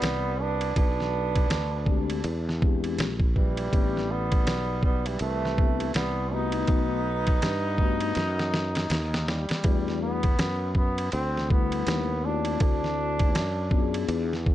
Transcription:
Already playing: tenor saxophone G3, trombone B3
0.02 fretless electric bass C2, snare, hi-hat pedal, ride
0.39 tenor saxophone B3, trombone D4
0.61 ride
0.76 fretless electric bass B1, tenor saxophone B3, trombone D4, kick, ride
1.00 snare
1.35 kick, ride
1.50 fretless electric bass D2, snare, hi-hat pedal, ride
1.85 vibraphone G#3 C4 D4 G4, kick
2.10 ride
2.24 fretless electric bass E2, ride
2.49 snare
2.59 vibraphone G#3 C4 D4 G4, kick
2.84 ride
2.98 fretless electric bass A#1, snare, hi-hat pedal, ride
3.20 kick
3.35 tenor saxophone E3, trombone G3, kick
3.57 ride
3.71 fretless electric bass A1, vibraphone B3 C4 D4 G4, kick, ride
3.97 snare
4.10 tenor saxophone G3, trombone B3
4.32 kick, ride
4.47 fretless electric bass B1, snare, hi-hat pedal, ride
4.83 tenor saxophone G3, trombone B3, kick
5.06 tenor saxophone E3, trombone G3, ride
5.19 fretless electric bass C2, tenor saxophone E3, trombone A3, ride
5.45 snare
5.55 vibraphone B3 C4 D4 G4, kick
5.80 ride
5.94 fretless electric bass C2, tenor saxophone G3, trombone B3, snare, hi-hat pedal, ride
6.29 vibraphone A3 B3 D#4 F#4, tenor saxophone B3
6.34 trombone D#4
6.52 ride
6.66 fretless electric bass B1, vibraphone A3 B3 D#4 F#4, kick, ride
7.27 kick, ride
7.42 fretless electric bass G2, snare, hi-hat pedal, ride
7.77 vibraphone A3 B3 D#4 F#4, kick
8.00 ride
8.15 fretless electric bass F#2, snare, ride
8.39 snare
8.54 snare
8.75 snare, ride
8.90 fretless electric bass D#2, snare, hi-hat pedal, ride
9.14 snare
9.28 trombone G3, snare
9.49 muted fretless electric bass stroke, snare, ride
9.62 fretless electric bass E2, vibraphone G3 A3 D4 F#4, kick, ride
9.88 snare
10.03 trombone B3
10.23 kick, ride
10.39 fretless electric bass F#2, snare, hi-hat pedal, ride
10.75 trombone B3, kick
10.98 ride
11.12 fretless electric bass D2, trombone C4, ride
11.37 snare
11.47 vibraphone G3 A3 D4 E4, kick
11.52 trombone B3
11.72 ride
11.87 fretless electric bass D#2, snare, hi-hat pedal, ride
12.21 vibraphone A3 C4 E4 F#4
12.26 trombone D4
12.45 ride
12.60 fretless electric bass D2, trombone D4, kick, ride
12.84 snare
13.19 kick, ride
13.35 fretless electric bass F#2, snare, hi-hat pedal, ride
13.69 vibraphone B3 D4 F4 F#4, kick
13.80 vibraphone G#4
13.94 ride
14.09 fretless electric bass E2, ride
14.33 snare
14.46 kick

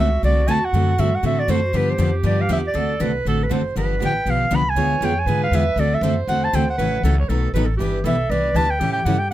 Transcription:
Already playing: upright bass C#2, clarinet F#4
0.00 clarinet E5
0.23 upright bass C2, steel-string acoustic guitar D3 A3 C4 F#4 A4, clarinet D5
0.48 upright bass E2, steel-string acoustic guitar D3 A3 C4 F#4 A4, clarinet G#5 A5
0.65 clarinet F#5
0.73 upright bass F#2, steel-string acoustic guitar D3 A3 C4 F#4 A4
0.98 upright bass G2, steel-string acoustic guitar D3 A3 C4 F#4 A4, clarinet E5
1.15 clarinet F#5
1.23 upright bass A2, steel-string acoustic guitar D3 A3 C4 F#4 A4, clarinet E5
1.39 clarinet D5
1.48 upright bass F#2, steel-string acoustic guitar D3 A3 C4 F#4 A4, clarinet C5
1.73 upright bass G2, steel-string acoustic guitar D3 F3 B3 D4 G4, clarinet G4 B4
1.91 clarinet C5
1.98 upright bass F2, steel-string acoustic guitar D3 F3 B3 D4 G4
2.23 upright bass G2, steel-string acoustic guitar D3 F3 B3 D4 G4, clarinet D5
2.41 clarinet F5
2.49 upright bass E2, steel-string acoustic guitar D3 F3 B3 D4 G4, clarinet E5
2.67 clarinet D5
2.75 upright bass D2, steel-string acoustic guitar D3 A3 C4 F#4 A4, clarinet A4
3.00 upright bass C2, steel-string acoustic guitar D3 A3 C4 F#4 A4, clarinet B4
3.25 upright bass A1, steel-string acoustic guitar D3 A3 C4 F#4 A4, clarinet A4
3.43 clarinet B4
3.49 upright bass F#1, steel-string acoustic guitar D3 A3 C4 F#4 A4, clarinet C5
3.76 upright bass G1, steel-string acoustic guitar D3 F3 B3 D4 G4, clarinet B4
3.99 upright bass A1, steel-string acoustic guitar D3 F3 B3 D4 G4
4.06 clarinet G5
4.26 upright bass B1, steel-string acoustic guitar D3 F3 B3 D4 G4
4.30 clarinet F5
4.51 upright bass C2, steel-string acoustic guitar D3 F3 B3 D4 G4
4.56 clarinet B5
4.70 clarinet G#5
4.76 upright bass D2, steel-string acoustic guitar D3 G#3 B3 F4 G#4, clarinet C#5
5.01 upright bass F2, steel-string acoustic guitar D3 G#3 B3 F4 G#4
5.05 clarinet G5
5.19 clarinet G#5
5.26 upright bass G#2, steel-string acoustic guitar D3 G#3 B3 F4 G#4, clarinet B4
5.43 clarinet F5
5.51 upright bass E2, steel-string acoustic guitar D3 G#3 B3 F4 G#4
5.56 clarinet E5
5.76 upright bass D2, steel-string acoustic guitar D3 A3 C4 F#4 A4, clarinet A4
5.80 clarinet D5
5.95 clarinet E5
6.01 upright bass F#2, steel-string acoustic guitar D3 A3 C4 F#4 A4, clarinet C5
6.27 upright bass E2, steel-string acoustic guitar D3 A3 C4 F#4 A4, clarinet F#5
6.44 clarinet A5
6.53 upright bass D2, steel-string acoustic guitar D3 A3 C4 F#4 A4, clarinet G5
6.70 clarinet F#5
6.78 upright bass A1, steel-string acoustic guitar C#3 E3 F#3 A3 C#4 E4 F#4 A4, clarinet B4
7.03 upright bass C#2, steel-string acoustic guitar C#3 E3 F#3 A3 C#4 E4 F#4 A4, clarinet A4
7.20 clarinet C#5
7.29 upright bass B1, steel-string acoustic guitar B2 D#3 F#3 A3 B3 D#4 F#4 A4, clarinet A4
7.54 upright bass A1, steel-string acoustic guitar B2 D#3 F#3 A3 B3 D#4 F#4 A4, clarinet B4
7.65 clarinet A4
7.77 upright bass G1, steel-string acoustic guitar E3 G3 B3 D4 E4 B4, clarinet G4
7.82 steel-string acoustic guitar G4
8.04 upright bass B1, steel-string acoustic guitar E3 G3 B3 D4 E4 G4 B4, clarinet A4 E5
8.30 upright bass C2, steel-string acoustic guitar E3 G3 B3 D4 E4 G4 B4, clarinet B4 D5
8.55 upright bass D2, steel-string acoustic guitar E3 G3 B3 D4 E4 G4 B4, clarinet A5
8.70 clarinet G5
8.80 upright bass A2, steel-string acoustic guitar C#3 E3 G3 A3 C#4 E4 G4 A4, clarinet G4
8.93 clarinet G5
9.05 upright bass G2, steel-string acoustic guitar C#3 E3 G3 A3 C#4 E4 G4 A4, clarinet F#5
9.19 clarinet G5

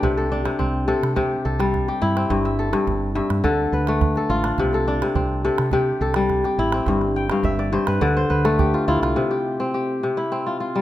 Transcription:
Already playing: kora A3 D4 F4 G4
0.03 fretless electric bass C2, kora C3, calabash thump
0.17 kora A4, calabash click
0.32 kora D4
0.45 kora C3, calabash click
0.59 fretless electric bass C2, kora C4, calabash thump
0.88 kora C3 A4
1.03 fretless electric bass C3, calabash click
1.16 kora C3 G4, calabash thump
1.45 fretless electric bass C2, kora A4
1.59 kora G3, calabash click
1.74 calabash thump, calabash click
1.88 kora G4, calabash click
2.02 fretless electric bass G2, kora E4
2.16 kora C4, calabash click
2.30 fretless electric bass G1, kora G2, calabash thump
2.45 kora E5, calabash click
2.59 kora A4
2.73 kora G2, calabash click
2.87 fretless electric bass G1, calabash thump
3.15 kora G2 E5
3.30 fretless electric bass G2, calabash click
3.44 fretless electric bass D2, kora D3 A4, calabash thump
3.72 fretless electric bass D2, kora B4
3.87 kora A3, calabash click
4.01 calabash thump, calabash click
4.16 kora A4, calabash click
4.29 fretless electric bass A1, kora F4
4.44 kora D4, calabash click
4.58 fretless electric bass C2, kora C3, calabash thump
4.73 kora A4, calabash click
4.88 kora D4
5.02 kora C3, calabash click
5.15 fretless electric bass C2, kora C4, calabash thump
5.45 kora C3 A4
5.58 fretless electric bass C3, calabash click
5.71 kora C3 G4, calabash thump
6.01 fretless electric bass C2, kora A4
6.14 kora G3, calabash click
6.29 calabash thump, calabash click
6.44 kora G4, calabash click
6.58 fretless electric bass A1, kora E4
6.72 kora C4, calabash click
6.86 fretless electric bass G1, kora G2, calabash thump, calabash click
7.01 calabash click
7.16 kora G5
7.30 kora G2 F5, calabash click
7.43 fretless electric bass G1, kora E5, calabash thump
7.59 kora D5, calabash click
7.73 kora G2 C5
7.87 fretless electric bass G2, kora B4, calabash click
8.01 fretless electric bass D2, kora D3 D5, calabash thump, calabash click
8.17 kora C5
8.30 fretless electric bass D2, kora B4, calabash click
8.45 kora A3 A4, calabash click
8.59 kora G4, calabash thump
8.74 kora F4, calabash click
8.88 fretless electric bass D2, kora E4 F4
9.02 fretless electric bass C2, kora F4, calabash click
9.16 kora C3
9.31 kora G4
9.60 kora C4
9.74 kora G4
10.03 kora C3
10.17 kora E4
10.32 kora C4
10.46 kora F4
10.60 kora F4
10.75 kora G3

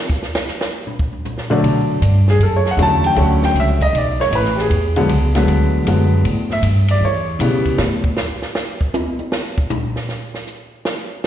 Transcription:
0.10 kick
0.23 snare
0.35 snare
0.48 snare, hi-hat pedal
0.61 snare
0.87 floor tom
0.99 kick
1.13 floor tom
1.25 floor tom, hi-hat pedal
1.38 snare
1.50 grand piano D3 F#3 A3 D4, floor tom
1.63 upright bass B2, ride
2.01 upright bass G2, hi-hat pedal, ride
2.28 grand piano G#4, snare
2.39 upright bass F#2, ride
2.43 grand piano A4
2.56 grand piano C#5
2.66 snare
2.71 grand piano F#5
2.77 upright bass E2, grand piano D3 F#3 A3 C#4, hi-hat pedal, ride
2.82 grand piano A5
3.04 grand piano G5, ride
3.16 upright bass D2, grand piano D3 F#3 A3 C#4, ride
3.21 grand piano F#5
3.43 grand piano G5, snare
3.54 upright bass C#2, hi-hat pedal, ride
3.60 grand piano E5
3.81 grand piano D#5, kick, ride
3.93 upright bass B1, ride
3.97 grand piano D5
4.20 grand piano C#5, snare
4.31 upright bass A1, hi-hat pedal, ride
4.35 grand piano B4
4.45 snare
4.55 grand piano G4, snare
4.60 grand piano G#4
4.70 upright bass E2, ride
4.96 grand piano D3 F#3 G#3 B3, ride
5.08 upright bass C#2, hi-hat pedal, ride
5.35 grand piano D3 F#3 G#3 B3, snare, ride
5.47 upright bass D2, ride
5.85 upright bass F#2, grand piano D3 F#3 G#3 B3, hi-hat pedal, ride
6.25 upright bass A2, ride
6.50 grand piano E5, snare
6.62 upright bass G2, hi-hat pedal, ride
6.88 grand piano D5, ride
7.01 upright bass E2
7.05 grand piano C#5
7.39 upright bass B2, grand piano C#3 E3 G3 B3, hi-hat pedal, ride
7.65 kick, ride
7.78 upright bass A2, snare
8.04 kick
8.17 snare, hi-hat pedal
8.42 snare
8.55 snare
8.81 kick
8.94 hi-hat pedal, high tom
9.19 high tom
9.32 snare
9.58 kick
9.70 floor tom, hi-hat pedal
9.96 snare
10.09 snare
10.34 snare
10.47 hi-hat pedal
10.85 snare

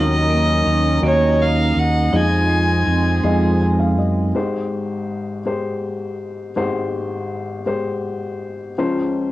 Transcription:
Already playing: fingered electric bass D#2, felt piano D#2 D#3 C#4 F#4 D#5, string section F#3 C#4 A#4 D#5, vibraphone D#4, violin D#5
0.30 vibraphone A#3
0.66 fingered electric bass D#2, vibraphone C#4
1.02 fingered electric bass D#2, vibraphone A#3, felt piano C#4 F#4 D#5
1.06 violin C#5
1.42 violin F5
1.76 fingered electric bass D#2, violin F#5
2.08 violin F#5
2.12 fingered electric bass F2, felt piano F3 G#3 F4 D#5, string section F3 C4 G#4, vibraphone D#4, violin G#5
2.49 vibraphone G#3
2.87 fingered electric bass F2, vibraphone C4
3.23 fingered electric bass F2, vibraphone G#3, felt piano G#3 F4 D#5
3.61 felt piano G#5
3.80 felt piano F5
3.97 fingered electric bass F#2, felt piano D#5
4.35 felt piano G#1 G#2 G#3 G4 C5
5.46 felt piano G#3 G4 C5
6.56 felt piano G#1 G#2 G#3 G4 C5
7.66 felt piano G#3 G4 C5
8.78 felt piano C#2 C#3 F3 C#4 C5

